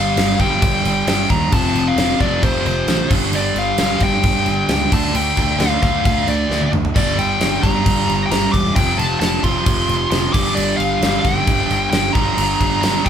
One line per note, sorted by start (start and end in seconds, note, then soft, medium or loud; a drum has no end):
0.00 0.11 G1 medium
0.00 0.38 G2 medium
0.00 0.39 D3 loud
0.00 0.38 G3 medium
0.00 0.40 F5 loud
0.17 0.33 G1 medium
0.17 snare loud
0.17 crash loud
0.39 0.56 G1 loud
0.39 1.52 G2 medium
0.39 1.52 D3 medium
0.39 1.51 G3 medium
0.39 1.07 G5 loud
0.39 kick medium
0.39 snare soft
0.39 crash medium
0.62 0.79 G1 medium
0.62 kick loud
0.62 crash medium
0.84 1.01 G1 medium
0.84 crash medium
1.07 1.24 G1 loud
1.07 1.31 G5 loud
1.07 snare loud
1.07 crash medium
1.30 1.47 D#2 medium
1.30 1.51 A#5 loud
1.30 kick medium
1.30 crash medium
1.52 1.69 F1 loud
1.52 2.19 F2 medium
1.52 2.20 C3 medium
1.52 2.18 F3 loud
1.52 1.88 A5 loud
1.52 kick loud
1.52 crash loud
1.73 1.91 F1 medium
1.73 crash medium
1.88 2.19 F5 loud
1.96 2.13 F1 medium
1.96 snare loud
1.96 crash medium
2.19 2.37 F1 medium
2.19 3.09 F2 medium
2.19 3.10 C3 medium
2.19 3.09 F3 medium
2.19 2.44 D5 medium
2.19 kick medium
2.19 crash medium
2.43 2.59 F1 medium
2.43 2.66 C5 medium
2.43 kick loud
2.43 crash medium
2.65 2.82 F1 medium
2.65 3.08 C5 medium
2.65 crash medium
2.87 3.04 A1 loud
2.87 snare loud
2.87 crash medium
3.10 3.27 G1 medium
3.10 3.77 G2 loud
3.10 3.78 D3 medium
3.10 3.78 G3 loud
3.10 kick loud
3.10 crash loud
3.32 3.49 G1 loud
3.32 3.58 D5 medium
3.32 crash medium
3.54 3.71 G1 loud
3.54 4.03 F5 loud
3.54 crash medium
3.78 3.95 G1 medium
3.78 4.90 G2 medium
3.78 4.90 D3 loud
3.78 snare loud
3.78 crash medium
3.82 4.92 G3 loud
4.00 4.18 G1 loud
4.00 4.70 G5 loud
4.00 kick loud
4.00 snare soft
4.00 crash medium
4.23 4.40 G1 loud
4.23 kick loud
4.23 crash medium
4.46 4.63 G1 loud
4.46 crash medium
4.69 4.85 C#2 medium
4.69 4.93 G5 loud
4.69 snare loud
4.69 crash medium
4.91 5.08 D2 medium
4.91 5.58 D3 loud
4.91 5.59 A3 loud
4.91 5.62 D4 loud
4.91 5.15 A5 loud
4.91 kick loud
4.91 crash loud
5.14 5.31 D2 loud
5.14 5.60 G5 loud
5.14 crash loud
5.37 5.53 D2 medium
5.37 kick medium
5.37 crash medium
5.59 5.75 D2 medium
5.59 6.71 D3 medium
5.59 6.72 A3 medium
5.59 5.82 F5 medium
5.59 snare loud
5.59 crash medium
5.63 6.73 D4 medium
5.83 5.99 D2 medium
5.83 6.05 F5 medium
5.83 kick medium
5.83 crash medium
6.05 6.22 D2 medium
6.05 6.26 F5 medium
6.05 kick loud
6.05 crash medium
6.27 6.44 D2 medium
6.27 6.70 D5 medium
6.27 crash medium
6.50 6.66 D2 medium
6.50 snare medium
6.61 high tom medium
6.73 6.89 D2 medium
6.73 mid tom loud
6.85 floor tom loud
6.94 7.12 G1 loud
6.94 7.61 G2 medium
6.94 7.62 D3 medium
6.94 7.60 G3 loud
6.94 7.19 D5 loud
6.94 kick loud
6.94 splash medium
6.94 crash medium
7.17 7.34 G1 loud
7.17 7.60 G5 loud
7.17 crash medium
7.40 7.57 G1 medium
7.40 snare loud
7.40 crash medium
7.61 7.80 G1 medium
7.61 8.74 G2 medium
7.61 8.75 D3 medium
7.61 8.73 G3 loud
7.61 8.21 A#5 loud
7.61 kick loud
7.61 crash medium
7.86 8.02 G1 loud
7.86 kick loud
7.86 crash medium
8.08 8.24 G1 loud
8.08 crash medium
8.26 8.47 G1 medium
8.26 8.31 G5 medium
8.31 8.52 A#5 loud
8.31 snare loud
8.31 crash medium
8.53 8.70 E1 medium
8.53 8.74 D6 loud
8.53 kick medium
8.53 crash medium
8.75 8.93 F1 loud
8.75 9.42 F2 medium
8.75 9.43 C3 loud
8.75 9.41 F3 loud
8.75 8.98 G5 loud
8.75 kick loud
8.75 crash loud
8.98 9.15 F1 medium
8.98 9.19 A5 loud
8.98 crash medium
9.20 9.37 F1 medium
9.20 9.44 A5 loud
9.20 snare loud
9.20 crash medium
9.43 9.60 F1 medium
9.43 10.32 F2 medium
9.43 10.33 C3 medium
9.43 10.32 F3 medium
9.43 10.10 C6 loud
9.43 kick medium
9.43 crash medium
9.66 9.83 F1 loud
9.66 kick loud
9.66 crash medium
9.88 10.05 F1 loud
9.88 crash medium
10.11 10.28 F1 loud
10.11 10.32 C6 loud
10.11 snare loud
10.11 crash medium
10.32 10.51 G1 medium
10.32 11.01 G2 loud
10.32 11.01 D3 loud
10.32 11.05 G3 loud
10.32 10.57 D6 loud
10.32 kick loud
10.32 crash loud
10.55 10.73 G1 loud
10.55 10.77 D5 medium
10.55 crash medium
10.77 10.95 G1 medium
10.77 11.25 F5 loud
10.77 crash medium
11.01 11.18 G1 loud
11.01 12.13 G2 medium
11.01 12.14 D3 medium
11.01 snare loud
11.01 crash medium
11.05 12.17 G3 loud
11.22 11.41 G1 loud
11.22 11.89 G5 loud
11.22 kick medium
11.22 snare soft
11.22 crash medium
11.47 11.64 G1 loud
11.47 kick loud
11.47 crash medium
11.69 11.86 G1 loud
11.69 crash medium
11.90 12.08 G1 medium
11.90 12.15 G5 loud
11.90 snare loud
11.90 crash medium
12.13 12.32 G1 medium
12.13 12.81 G2 loud
12.13 12.82 D3 loud
12.13 12.80 A#5 loud
12.13 kick loud
12.13 crash medium
12.17 12.83 G3 loud
12.37 12.54 G1 loud
12.37 crash loud
12.61 12.77 G1 medium
12.61 kick medium
12.61 crash medium
12.81 12.99 G1 loud
12.81 13.09 G2 medium
12.81 13.09 D3 loud
12.81 13.06 A#5 loud
12.81 snare loud
12.81 crash medium
12.86 13.09 G3 medium
13.05 13.09 G1 medium
13.05 13.09 G5 medium
13.05 kick medium
13.05 crash medium